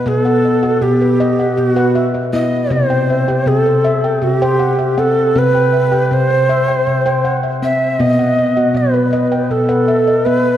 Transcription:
0.06 handpan B2 B3, native american-style wooden flute A4
0.25 handpan F#5
0.45 handpan D#5
0.63 handpan F#4 F#5
0.82 handpan B2, native american-style wooden flute G4
1.01 handpan B4
1.20 handpan D#5
1.39 handpan F#5
1.57 handpan B2, native american-style wooden flute F#4
1.76 handpan B4 F#5
1.95 handpan E5
2.14 handpan D#5
2.33 handpan B3 E4, native american-style wooden flute D#5
2.70 handpan C3 C4, native american-style wooden flute C5
2.90 handpan G5
3.10 handpan E5
3.28 handpan G4 G5
3.46 handpan C3, native american-style wooden flute A4
3.66 handpan C5
3.85 handpan E5
4.04 handpan G5
4.22 handpan C3, native american-style wooden flute F#4
4.37 native american-style wooden flute G4
4.42 handpan C5 G5
4.59 handpan F#5
4.79 handpan E5
4.98 handpan C4 F#5, native american-style wooden flute A4
5.36 handpan C3 C4, native american-style wooden flute B4
5.55 handpan G5
5.73 handpan E5
5.92 handpan G4 G5
6.11 handpan C3, native american-style wooden flute C5
6.30 handpan C5
6.49 handpan E5
6.68 handpan G5
6.87 handpan C3
7.06 handpan C5 G5
7.25 handpan F#5
7.43 handpan E5
7.62 handpan C4, native american-style wooden flute E5
7.99 handpan B2 B3, native american-style wooden flute D#5
8.19 handpan F#5
8.38 handpan D#5
8.57 handpan F#4 F#5
8.74 handpan B2, native american-style wooden flute B4
8.94 handpan B4
9.13 handpan D#5
9.32 handpan G5
9.51 handpan B2, native american-style wooden flute A4
9.69 handpan B4 F#5
9.88 handpan E5
10.07 handpan D#5
10.25 handpan B3 E5, native american-style wooden flute B4

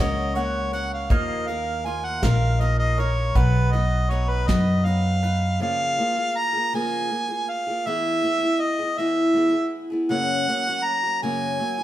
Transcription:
Already playing: upright bass C#2, mandolin A#3 F#4 F#5, steel-string acoustic guitar A#4
0.00 steel-string acoustic guitar F#2 C#3 F#3 A#3 C#4, mandolin C#5, harmonica D#5
0.35 steel-string acoustic guitar F#3 A#3 C#4 A#4, harmonica C#5, mandolin F#5, closed hi-hat
0.71 steel-string acoustic guitar F#3 A#3 C#4 A#4, mandolin C#5, harmonica F#5, closed hi-hat
0.93 harmonica F5
1.10 upright bass D#2, steel-string acoustic guitar D#3 F3 A#3 D#4 A#4, mandolin A#3 F5, harmonica D#5, kick, closed hi-hat
1.47 steel-string acoustic guitar A#3 D#4 A#4, mandolin A#4, harmonica F5, closed hi-hat
1.84 steel-string acoustic guitar F3 A#3 D#4 A#4, mandolin F4, harmonica G#5, closed hi-hat
2.05 harmonica F#5
2.22 upright bass A#1, steel-string acoustic guitar D#3 F3 A#3 D#4 A#4, mandolin A#4, harmonica F5, kick, snare, closed hi-hat
2.59 steel-string acoustic guitar F3 A#3 D#4 A#4, harmonica D#5, mandolin F5, closed hi-hat
2.79 harmonica D#5
2.97 steel-string acoustic guitar A#3 D#4 A#4, mandolin A#4, harmonica C#5, closed hi-hat
3.35 upright bass B1, steel-string acoustic guitar B2 F#3 B3 D#4 B4, mandolin B3 F#5, harmonica B4, kick, closed hi-hat
3.73 steel-string acoustic guitar B3 D#4 B4, mandolin B4, harmonica D#5, closed hi-hat
4.09 steel-string acoustic guitar F#3 B3 D#4 B4, mandolin D#4, harmonica C#5, closed hi-hat
4.29 harmonica B4
4.48 upright bass F#2, steel-string acoustic guitar B2 F#3 B3 D#4 B4, mandolin B4, harmonica D#5, kick, snare, closed hi-hat
4.84 steel-string acoustic guitar F#3 B3 D#4 B4, harmonica F5, closed hi-hat
5.23 steel-string acoustic guitar B3 D#4 B4, mandolin B4, closed hi-hat
5.60 steel-string acoustic guitar C#3 F3 A#3 F4 G#4, harmonica F5
5.97 steel-string acoustic guitar F3 A#3 F4 G#4
6.16 steel-string acoustic guitar A#3 F4 G#4
6.38 harmonica A#5
6.53 steel-string acoustic guitar A#3 F4 G#4
6.73 steel-string acoustic guitar C#3 F3 A#3 F4 G#4, harmonica G#5
7.10 steel-string acoustic guitar F3 A#3 F4 G#4
7.28 steel-string acoustic guitar A#3 F4 G#4
7.50 harmonica F5
7.67 steel-string acoustic guitar A#3 F4 G#4
7.86 steel-string acoustic guitar E3 B3 E4 G#4, harmonica E5
8.22 steel-string acoustic guitar E3 B3 E4 G#4
8.41 steel-string acoustic guitar B3 E4 G#4
8.61 harmonica D#5
8.79 steel-string acoustic guitar B3 E4 G#4
8.98 steel-string acoustic guitar E3 B3 E4 G#4, harmonica E5
9.34 steel-string acoustic guitar E3 B3 E4 G#4
9.53 steel-string acoustic guitar B3 E4 G#4
9.90 steel-string acoustic guitar B3 E4 G#4
10.09 steel-string acoustic guitar F#2 C#3 F#3 A#3 C#4 F#4, harmonica F#5
10.47 steel-string acoustic guitar F#3 A#3 C#4 F#4
10.66 steel-string acoustic guitar F#3 A#3 C#4 F#4
10.84 harmonica A#5
11.03 steel-string acoustic guitar F#3 A#3 C#4 F#4
11.22 steel-string acoustic guitar F#2 C#3 F#3 A#3 C#4 F#4, harmonica G#5
11.58 steel-string acoustic guitar F#3 A#3 C#4 F#4
11.78 steel-string acoustic guitar A#3 C#4 F#4

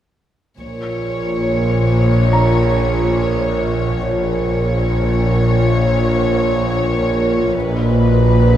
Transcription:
0.58 double bass section A#1, synth drone A#1, cello section A#2, glass harmonica F4 A#4 C#5, violin section C#5
2.33 grand piano A#5
4.07 synth drone A#1, double bass section A#1, cello section A#2, glass harmonica F4 A#4 C#5, violin section C#5
7.54 synth drone A#1, double bass section A#1, cello section A#2, glass harmonica F#4 B4 D#5, violin section B4

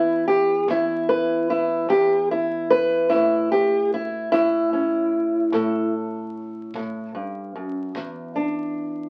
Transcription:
Already playing: steel-string acoustic guitar E2 E4 B4
0.28 steel-string acoustic guitar G4
0.68 steel-string acoustic guitar E2 E4, kick
1.09 steel-string acoustic guitar B4
1.50 steel-string acoustic guitar E4
1.89 steel-string acoustic guitar E2 G4, kick
2.31 steel-string acoustic guitar E4
2.70 steel-string acoustic guitar B4
3.10 steel-string acoustic guitar A2 E4, kick
3.52 steel-string acoustic guitar G4
3.94 steel-string acoustic guitar E4
4.32 steel-string acoustic guitar A2 E4, kick
4.73 steel-string acoustic guitar C#4
5.52 steel-string acoustic guitar A2 A4, kick
6.74 steel-string acoustic guitar A2, kick
7.15 steel-string acoustic guitar G2
7.55 steel-string acoustic guitar F#2
7.95 steel-string acoustic guitar E2, kick
8.36 steel-string acoustic guitar D4

